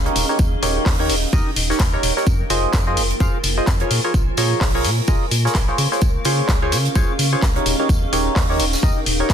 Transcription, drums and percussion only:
0.06 closed hi-hat soft
0.16 open hi-hat loud
0.16 tambourine medium
0.39 kick loud
0.39 tambourine medium
0.63 open hi-hat loud
0.63 tambourine medium
0.86 kick loud
0.86 snare loud
0.86 clap loud
0.86 open hi-hat medium
1.10 snare medium
1.10 open hi-hat loud
1.10 tambourine medium
1.33 kick loud
1.33 tambourine medium
1.56 open hi-hat loud
1.56 tambourine medium
1.70 snare medium
1.79 kick loud
1.79 snare loud
1.79 clap loud
1.79 open hi-hat medium
1.79 tambourine medium
2.03 open hi-hat loud
2.03 tambourine medium
2.17 snare soft
2.27 kick loud
2.27 tambourine medium
2.50 open hi-hat loud
2.50 tambourine medium
2.73 kick loud
2.73 snare loud
2.73 clap loud
2.73 tambourine medium
2.97 open hi-hat loud
2.97 tambourine medium
3.11 closed hi-hat soft
3.20 kick loud
3.20 tambourine medium
3.43 snare soft
3.43 open hi-hat loud
3.43 tambourine medium
3.67 kick loud
3.67 snare loud
3.67 clap loud
3.67 tambourine medium
3.80 closed hi-hat soft
3.91 open hi-hat loud
3.91 tambourine medium
4.14 kick loud
4.14 tambourine medium
4.37 open hi-hat loud
4.37 tambourine medium
4.61 kick loud
4.61 snare loud
4.61 clap loud
4.61 open hi-hat medium
4.84 snare medium
4.84 open hi-hat medium
4.84 tambourine medium
5.08 kick loud
5.08 tambourine medium
5.31 open hi-hat loud
5.31 tambourine medium
5.46 snare medium
5.55 kick loud
5.55 snare loud
5.55 clap loud
5.55 open hi-hat medium
5.55 tambourine medium
5.78 open hi-hat loud
5.78 tambourine medium
5.92 snare soft
6.01 kick loud
6.01 tambourine medium
6.25 open hi-hat loud
6.25 tambourine medium
6.49 kick loud
6.49 snare loud
6.49 clap loud
6.49 tambourine medium
6.72 snare loud
6.72 open hi-hat medium
6.72 tambourine medium
6.85 closed hi-hat soft
6.95 kick loud
6.95 tambourine medium
7.18 snare soft
7.18 open hi-hat loud
7.18 tambourine medium
7.42 kick loud
7.42 snare loud
7.42 clap loud
7.42 tambourine medium
7.56 closed hi-hat soft
7.66 open hi-hat loud
7.66 tambourine medium
7.89 kick loud
7.89 tambourine medium
8.13 open hi-hat loud
8.13 tambourine medium
8.36 kick loud
8.36 snare loud
8.36 clap loud
8.36 open hi-hat medium
8.60 open hi-hat medium
8.60 tambourine medium
8.73 snare loud
8.73 tambourine medium
8.83 kick loud
8.83 tambourine medium
9.06 open hi-hat loud
9.06 tambourine medium
9.29 kick loud
9.29 snare loud
9.29 clap loud
9.29 open hi-hat medium
9.29 tambourine medium

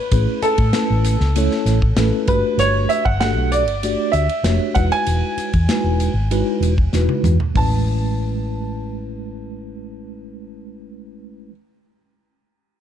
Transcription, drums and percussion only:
0.11 kick medium
0.11 hi-hat pedal medium
0.11 ride medium
0.42 hi-hat pedal medium
0.42 ride medium
0.58 kick medium
0.58 ride medium
0.73 snare medium
0.73 hi-hat pedal medium
0.73 ride medium
1.04 hi-hat pedal medium
1.04 ride medium
1.20 snare soft
1.36 hi-hat pedal medium
1.36 ride medium
1.51 snare soft
1.66 snare soft
1.66 hi-hat pedal medium
1.66 ride soft
1.82 kick medium
1.97 snare loud
1.97 hi-hat pedal medium
1.97 ride medium
2.27 kick medium
2.27 hi-hat pedal medium
2.27 ride soft
2.59 hi-hat pedal medium
2.59 ride medium
2.90 hi-hat pedal medium
2.90 ride soft
3.06 kick medium
3.21 snare medium
3.21 hi-hat pedal medium
3.21 ride medium
3.52 hi-hat pedal medium
3.52 ride medium
3.68 ride medium
3.83 hi-hat pedal medium
3.83 ride medium
4.13 hi-hat pedal medium
4.13 ride soft
4.29 ride medium
4.44 snare medium
4.44 hi-hat pedal medium
4.44 ride medium
4.75 kick medium
4.75 hi-hat pedal medium
4.75 ride medium
4.92 ride soft
5.06 hi-hat pedal medium
5.06 ride medium
5.38 hi-hat pedal medium
5.38 ride medium
5.53 kick medium
5.53 ride medium
5.69 snare medium
5.69 hi-hat pedal medium
5.69 ride medium
6.00 hi-hat pedal medium
6.00 ride medium
6.31 hi-hat pedal medium
6.31 ride medium
6.63 hi-hat pedal medium
6.63 ride medium
6.78 kick medium
6.93 snare soft
6.93 hi-hat pedal medium
7.09 high tom soft
7.24 hi-hat pedal medium
7.24 mid tom medium
7.40 floor tom medium
7.55 kick medium
7.55 floor tom medium
7.55 open hi-hat medium

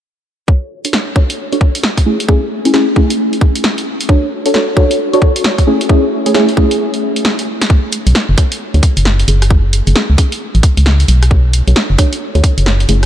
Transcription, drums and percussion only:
0.48 kick loud
0.85 closed hi-hat medium
0.93 snare loud
1.16 kick medium
1.30 closed hi-hat medium
1.53 closed hi-hat soft
1.61 kick medium
1.75 closed hi-hat medium
1.83 snare loud
1.98 kick medium
1.98 closed hi-hat soft
2.20 closed hi-hat medium
2.29 kick loud
2.65 closed hi-hat medium
2.74 snare loud
2.96 kick medium
3.10 closed hi-hat medium
3.33 closed hi-hat soft
3.41 kick loud
3.55 closed hi-hat medium
3.64 snare loud
3.78 closed hi-hat soft
4.01 closed hi-hat medium
4.09 kick loud
4.46 closed hi-hat medium
4.54 snare loud
4.77 kick loud
4.91 closed hi-hat medium
5.13 closed hi-hat soft
5.22 kick loud
5.36 closed hi-hat medium
5.44 snare loud
5.58 kick medium
5.58 closed hi-hat soft
5.81 closed hi-hat medium
5.89 kick loud
6.26 closed hi-hat medium
6.35 snare loud
6.49 closed hi-hat soft
6.57 kick loud
6.71 closed hi-hat medium
6.94 closed hi-hat soft
7.16 closed hi-hat medium
7.25 snare loud
7.39 closed hi-hat soft
7.62 snare medium
7.62 closed hi-hat medium
7.70 kick loud
7.92 open hi-hat loud
8.07 closed hi-hat medium
8.15 snare loud
8.38 kick loud
8.38 cross-stick medium
8.38 open hi-hat loud
8.52 closed hi-hat medium
8.74 closed hi-hat soft
8.83 kick medium
8.83 open hi-hat loud
8.97 closed hi-hat medium
9.05 snare loud
9.20 closed hi-hat medium
9.28 open hi-hat loud
9.42 cross-stick medium
9.42 closed hi-hat medium
9.50 kick loud
9.73 open hi-hat loud
9.87 closed hi-hat medium
9.96 snare loud
10.18 kick loud
10.18 open hi-hat loud
10.32 closed hi-hat medium
10.55 closed hi-hat soft
10.63 kick loud
10.63 open hi-hat loud
10.77 closed hi-hat medium
10.86 snare loud
11.00 closed hi-hat soft
11.08 open hi-hat loud
11.23 cross-stick medium
11.23 closed hi-hat medium
11.31 kick loud
11.53 open hi-hat loud
11.68 closed hi-hat medium
11.76 snare loud
11.98 kick loud
11.98 cross-stick soft
11.98 open hi-hat loud
12.13 closed hi-hat medium
12.35 closed hi-hat soft
12.44 kick loud
12.44 open hi-hat medium
12.58 closed hi-hat medium
12.66 snare loud
12.80 closed hi-hat soft
12.89 open hi-hat medium
13.03 cross-stick medium
13.03 closed hi-hat medium

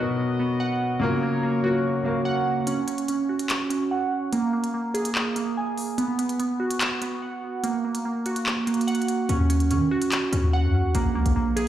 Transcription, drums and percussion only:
2.67 closed hi-hat medium
2.88 closed hi-hat medium
2.98 closed hi-hat medium
3.08 closed hi-hat medium
3.39 closed hi-hat medium
3.50 clap loud
3.50 closed hi-hat medium
3.70 closed hi-hat medium
4.33 closed hi-hat medium
4.64 closed hi-hat medium
4.95 closed hi-hat medium
5.05 closed hi-hat medium
5.15 clap loud
5.36 closed hi-hat medium
5.78 open hi-hat medium
5.98 closed hi-hat medium
6.19 closed hi-hat medium
6.29 closed hi-hat medium
6.40 closed hi-hat medium
6.71 closed hi-hat medium
6.81 clap loud
6.81 closed hi-hat medium
7.02 closed hi-hat medium
7.64 closed hi-hat medium
7.95 closed hi-hat medium
8.26 closed hi-hat medium
8.36 closed hi-hat medium
8.46 clap loud
8.67 closed hi-hat medium
8.74 closed hi-hat medium
8.81 closed hi-hat medium
8.88 closed hi-hat medium
8.95 closed hi-hat medium
9.02 closed hi-hat medium
9.08 closed hi-hat medium
9.29 closed hi-hat medium
9.50 closed hi-hat medium
9.60 closed hi-hat medium
9.71 closed hi-hat medium
10.02 closed hi-hat medium
10.12 clap loud
10.12 closed hi-hat medium
10.33 closed hi-hat medium
10.95 closed hi-hat medium
11.26 closed hi-hat medium
11.57 closed hi-hat medium

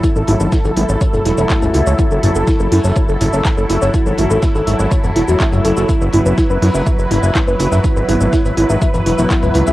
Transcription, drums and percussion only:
0.04 kick loud
0.04 closed hi-hat medium
0.04 shaker medium
0.16 shaker soft
0.27 closed hi-hat medium
0.27 mid tom medium
0.27 open hi-hat loud
0.40 shaker medium
0.52 kick loud
0.52 snare loud
0.52 closed hi-hat medium
0.52 shaker medium
0.65 closed hi-hat soft
0.65 shaker soft
0.76 closed hi-hat medium
0.76 open hi-hat loud
0.89 shaker medium
1.01 kick loud
1.01 closed hi-hat medium
1.01 shaker medium
1.13 closed hi-hat soft
1.13 mid tom medium
1.13 shaker soft
1.25 snare soft
1.25 closed hi-hat medium
1.25 open hi-hat loud
1.38 closed hi-hat soft
1.38 shaker medium
1.50 kick loud
1.50 snare loud
1.50 clap loud
1.50 closed hi-hat medium
1.50 shaker medium
1.62 closed hi-hat soft
1.62 mid tom medium
1.62 shaker soft
1.74 closed hi-hat medium
1.74 open hi-hat loud
1.86 closed hi-hat soft
1.86 shaker medium
1.99 kick loud
1.99 closed hi-hat medium
1.99 shaker soft
2.11 shaker soft
2.23 closed hi-hat medium
2.23 mid tom medium
2.23 open hi-hat loud
2.35 shaker medium
2.47 kick loud
2.47 snare loud
2.47 closed hi-hat medium
2.47 shaker medium
2.60 shaker soft
2.72 open hi-hat medium
2.72 open hi-hat loud
2.84 shaker medium
2.96 kick loud
2.96 closed hi-hat medium
2.96 shaker medium
3.09 shaker soft
3.20 snare soft
3.20 closed hi-hat medium
3.20 mid tom medium
3.20 open hi-hat loud
3.33 shaker medium
3.45 kick loud
3.45 snare loud
3.45 clap loud
3.45 closed hi-hat medium
3.45 shaker medium
3.57 shaker soft
3.69 snare soft
3.69 closed hi-hat medium
3.69 open hi-hat loud
3.82 snare soft
3.82 mid tom medium
3.82 shaker medium
3.94 kick loud
3.94 closed hi-hat medium
3.94 shaker medium
4.06 shaker soft
4.18 closed hi-hat medium
4.18 mid tom medium
4.18 open hi-hat loud
4.31 shaker medium
4.42 kick loud
4.42 snare loud
4.42 closed hi-hat medium
4.42 shaker medium
4.55 closed hi-hat soft
4.55 shaker soft
4.67 closed hi-hat medium
4.67 open hi-hat loud
4.79 shaker medium
4.91 kick loud
4.91 closed hi-hat medium
4.91 shaker medium
5.04 closed hi-hat soft
5.04 mid tom medium
5.04 shaker soft
5.15 snare soft
5.15 closed hi-hat medium
5.15 open hi-hat loud
5.28 closed hi-hat soft
5.28 shaker medium
5.40 kick loud
5.40 snare loud
5.40 clap loud
5.40 closed hi-hat medium
5.40 shaker medium
5.52 closed hi-hat soft
5.52 mid tom medium
5.52 shaker soft
5.65 closed hi-hat medium
5.65 open hi-hat loud
5.77 closed hi-hat soft
5.77 shaker medium
5.89 kick loud
5.89 closed hi-hat medium
5.89 shaker soft
6.01 shaker soft
6.13 closed hi-hat medium
6.13 mid tom medium
6.13 open hi-hat loud
6.26 shaker medium
6.38 kick loud
6.38 snare loud
6.38 closed hi-hat medium
6.38 shaker medium
6.50 shaker soft
6.62 open hi-hat loud
6.62 open hi-hat medium
6.75 shaker medium
6.87 kick loud
6.87 closed hi-hat medium
6.87 shaker medium
6.99 shaker soft
7.11 snare soft
7.11 closed hi-hat medium
7.11 mid tom medium
7.11 open hi-hat loud
7.23 shaker medium
7.35 kick loud
7.35 snare loud
7.35 clap loud
7.35 closed hi-hat medium
7.35 shaker medium
7.48 shaker soft
7.59 snare soft
7.59 closed hi-hat medium
7.59 open hi-hat loud
7.72 snare soft
7.72 mid tom medium
7.72 shaker medium
7.84 kick loud
7.84 closed hi-hat medium
7.84 shaker medium
7.97 shaker soft
8.09 closed hi-hat medium
8.09 mid tom medium
8.09 open hi-hat loud
8.21 shaker medium
8.33 kick loud
8.33 snare loud
8.33 closed hi-hat medium
8.33 shaker medium
8.45 closed hi-hat soft
8.45 shaker soft
8.57 closed hi-hat medium
8.57 open hi-hat loud
8.70 shaker medium
8.82 kick loud
8.82 closed hi-hat medium
8.82 shaker medium
8.94 closed hi-hat soft
8.94 mid tom medium
8.94 shaker soft
9.06 snare soft
9.06 closed hi-hat medium
9.06 open hi-hat loud
9.18 closed hi-hat soft
9.18 shaker medium
9.30 kick loud
9.30 snare loud
9.30 clap loud
9.30 closed hi-hat medium
9.30 shaker medium
9.42 closed hi-hat soft
9.42 mid tom medium
9.42 shaker soft
9.54 closed hi-hat medium
9.54 open hi-hat loud
9.67 closed hi-hat soft
9.67 shaker medium

